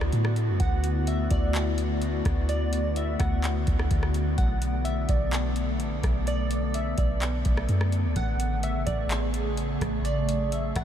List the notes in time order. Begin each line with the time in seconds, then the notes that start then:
Already playing: D2 D3 A3 B3 E4 F#4 D5
0.01 cross-stick
0.12 A2, closed hi-hat
0.25 cross-stick
0.36 closed hi-hat
0.48 F#2
0.60 D2 F#5, kick, closed hi-hat
0.84 closed hi-hat
1.07 E5, closed hi-hat
1.31 D2 D5, kick, closed hi-hat
1.55 clap, closed hi-hat
1.78 closed hi-hat
2.02 closed hi-hat
2.25 D2, kick, cross-stick, closed hi-hat
2.49 D5, closed hi-hat
2.73 closed hi-hat
2.96 E5, closed hi-hat
3.19 D2 F#5, kick, cross-stick, closed hi-hat
3.44 clap, closed hi-hat
3.67 D2, kick, closed hi-hat
3.79 cross-stick
3.91 D2, kick, closed hi-hat
4.03 cross-stick
4.14 closed hi-hat
4.38 B1 A4 F#5, kick, closed hi-hat
4.62 closed hi-hat
4.85 E5, closed hi-hat
5.09 B1 D5, kick, closed hi-hat
5.33 clap, closed hi-hat
5.56 closed hi-hat
5.80 A1, closed hi-hat
5.92 B1
6.03 B1, kick, cross-stick, closed hi-hat
6.27 D5, closed hi-hat
6.51 closed hi-hat
6.74 E5, closed hi-hat
6.98 B1 D5, kick, closed hi-hat
7.22 clap, closed hi-hat
7.45 B1, kick, closed hi-hat
7.57 cross-stick
7.69 F#2, closed hi-hat
7.81 cross-stick
7.92 closed hi-hat
8.04 D2
8.16 A1 C#3 A3 G#4 F#5 C#6, kick, closed hi-hat
8.40 closed hi-hat
8.63 E5, closed hi-hat
8.86 A1 D5, kick, closed hi-hat
9.11 clap, closed hi-hat
9.34 closed hi-hat
9.57 closed hi-hat
9.81 A1, kick, cross-stick, closed hi-hat
10.05 F#3 D5, closed hi-hat
10.29 closed hi-hat
10.52 E5, closed hi-hat
10.76 A1 F#5, kick, cross-stick, closed hi-hat